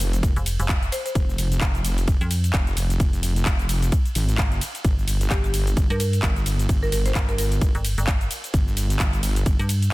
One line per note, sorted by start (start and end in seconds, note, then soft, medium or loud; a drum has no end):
0.00 0.22 F1 loud
0.00 open hi-hat loud
0.00 ride medium
0.00 shaker medium
0.13 closed hi-hat medium
0.13 shaker soft
0.23 0.34 F1 loud
0.23 kick loud
0.23 closed hi-hat medium
0.23 ride medium
0.23 shaker soft
0.36 0.57 F1 loud
0.36 closed hi-hat soft
0.36 shaker soft
0.46 open hi-hat loud
0.46 ride medium
0.46 shaker medium
0.59 0.91 F1 loud
0.59 closed hi-hat medium
0.59 shaker soft
0.69 kick loud
0.69 clap loud
0.69 closed hi-hat medium
0.69 ride medium
0.69 shaker soft
0.83 closed hi-hat soft
0.83 shaker soft
0.92 1.01 C5 medium
0.92 open hi-hat loud
0.92 ride medium
0.92 shaker medium
1.06 1.12 C5 medium
1.06 closed hi-hat medium
1.06 shaker soft
1.15 1.60 F1 loud
1.15 kick loud
1.15 closed hi-hat medium
1.15 ride medium
1.15 shaker soft
1.29 shaker soft
1.38 open hi-hat loud
1.38 ride medium
1.38 shaker medium
1.52 closed hi-hat soft
1.52 shaker soft
1.61 2.06 F1 loud
1.61 kick loud
1.61 clap loud
1.61 closed hi-hat medium
1.61 ride medium
1.61 shaker soft
1.75 closed hi-hat soft
1.75 shaker soft
1.85 open hi-hat loud
1.85 ride medium
1.85 shaker medium
1.98 closed hi-hat medium
1.98 shaker soft
2.08 2.19 F1 loud
2.08 kick loud
2.08 closed hi-hat medium
2.08 ride medium
2.08 shaker soft
2.21 2.52 F2 loud
2.21 closed hi-hat soft
2.21 shaker soft
2.31 open hi-hat loud
2.31 ride medium
2.31 shaker medium
2.44 closed hi-hat soft
2.44 shaker soft
2.53 2.98 F1 medium
2.53 kick loud
2.53 clap loud
2.53 closed hi-hat medium
2.53 ride medium
2.53 shaker soft
2.67 closed hi-hat soft
2.67 shaker soft
2.77 open hi-hat loud
2.77 ride medium
2.77 shaker medium
2.90 closed hi-hat medium
2.90 shaker soft
3.00 3.45 F1 medium
3.00 kick loud
3.00 closed hi-hat medium
3.00 ride medium
3.00 shaker soft
3.13 closed hi-hat soft
3.13 shaker soft
3.23 open hi-hat loud
3.23 ride medium
3.23 shaker medium
3.36 closed hi-hat soft
3.36 shaker soft
3.45 3.91 F1 loud
3.45 kick loud
3.45 clap loud
3.45 closed hi-hat medium
3.45 ride medium
3.45 shaker soft
3.59 closed hi-hat soft
3.59 shaker soft
3.69 open hi-hat loud
3.69 ride medium
3.69 shaker medium
3.82 closed hi-hat medium
3.82 shaker soft
3.92 kick loud
3.92 closed hi-hat medium
3.92 ride medium
3.92 shaker soft
4.06 closed hi-hat soft
4.06 shaker soft
4.15 4.60 G#1 loud
4.15 open hi-hat loud
4.15 ride medium
4.15 shaker medium
4.29 closed hi-hat soft
4.29 shaker soft
4.38 kick loud
4.38 clap loud
4.38 closed hi-hat medium
4.38 ride medium
4.38 shaker soft
4.52 closed hi-hat soft
4.52 shaker soft
4.61 open hi-hat loud
4.61 ride medium
4.61 shaker medium
4.75 closed hi-hat medium
4.75 shaker soft
4.85 5.29 G1 loud
4.85 kick loud
4.85 closed hi-hat medium
4.85 ride medium
4.85 shaker soft
4.99 shaker soft
5.08 open hi-hat loud
5.08 ride medium
5.08 shaker medium
5.21 closed hi-hat medium
5.21 shaker soft
5.30 5.75 G1 loud
5.30 5.39 G4 medium
5.30 kick loud
5.30 clap loud
5.30 closed hi-hat medium
5.30 ride medium
5.30 shaker soft
5.44 5.50 G4 medium
5.44 closed hi-hat soft
5.44 shaker soft
5.54 open hi-hat loud
5.54 ride medium
5.54 shaker medium
5.67 closed hi-hat medium
5.67 shaker soft
5.77 5.88 G1 loud
5.77 kick loud
5.77 closed hi-hat medium
5.77 ride medium
5.77 shaker soft
5.90 6.21 G2 loud
5.90 5.96 A#4 medium
5.90 closed hi-hat soft
5.90 shaker soft
6.00 6.08 A#4 medium
6.00 open hi-hat loud
6.00 ride medium
6.00 shaker medium
6.13 closed hi-hat medium
6.13 shaker soft
6.22 6.68 G1 medium
6.22 kick loud
6.22 clap loud
6.22 closed hi-hat medium
6.22 ride medium
6.22 shaker soft
6.36 closed hi-hat soft
6.36 shaker soft
6.46 open hi-hat loud
6.46 ride medium
6.46 shaker medium
6.59 closed hi-hat medium
6.59 shaker soft
6.69 7.14 G1 medium
6.69 kick loud
6.69 closed hi-hat medium
6.69 ride medium
6.69 shaker soft
6.83 6.89 A#4 medium
6.83 shaker soft
6.92 7.01 A#4 medium
6.92 open hi-hat loud
6.92 ride medium
6.92 shaker medium
7.06 7.18 C5 medium
7.06 closed hi-hat medium
7.06 shaker soft
7.15 7.60 G1 loud
7.15 kick loud
7.15 clap loud
7.15 closed hi-hat medium
7.15 ride medium
7.15 shaker soft
7.29 7.35 A#4 medium
7.29 closed hi-hat soft
7.29 shaker soft
7.38 7.47 A#4 medium
7.38 open hi-hat loud
7.38 ride medium
7.38 shaker medium
7.52 closed hi-hat medium
7.52 shaker soft
7.61 7.73 G1 loud
7.61 kick loud
7.61 closed hi-hat medium
7.61 ride medium
7.61 shaker soft
7.75 7.96 G1 loud
7.75 closed hi-hat soft
7.75 shaker soft
7.85 open hi-hat loud
7.85 ride medium
7.85 shaker medium
7.98 8.29 G1 loud
7.98 closed hi-hat medium
7.98 shaker soft
8.07 kick loud
8.07 clap loud
8.07 closed hi-hat medium
8.07 ride medium
8.07 shaker soft
8.21 closed hi-hat soft
8.21 shaker soft
8.31 open hi-hat loud
8.31 ride medium
8.31 shaker medium
8.44 closed hi-hat medium
8.44 shaker soft
8.54 8.98 G1 medium
8.54 kick loud
8.54 closed hi-hat medium
8.54 ride medium
8.54 shaker soft
8.68 shaker soft
8.77 open hi-hat loud
8.77 ride medium
8.77 shaker medium
8.90 closed hi-hat medium
8.90 shaker soft
8.99 9.45 G1 loud
8.99 kick loud
8.99 clap loud
8.99 closed hi-hat medium
8.99 ride medium
8.99 shaker soft
9.13 closed hi-hat soft
9.13 shaker soft
9.23 open hi-hat loud
9.23 ride medium
9.23 shaker medium
9.36 closed hi-hat medium
9.36 shaker soft
9.46 9.57 G1 loud
9.46 kick loud
9.46 closed hi-hat medium
9.46 ride medium
9.46 shaker soft
9.59 9.91 G2 loud
9.59 closed hi-hat soft
9.59 shaker soft
9.69 open hi-hat loud
9.69 ride medium
9.69 shaker medium
9.82 closed hi-hat medium
9.82 shaker soft